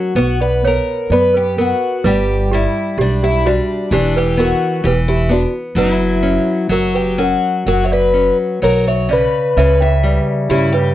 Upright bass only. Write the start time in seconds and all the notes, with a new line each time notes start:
0.15 B1
1.10 F#2
2.04 G1
2.98 B1
3.91 E1
4.84 E1
5.75 F#1
6.69 F#1
7.66 F#1
8.63 B1
9.57 C#2
10.49 G2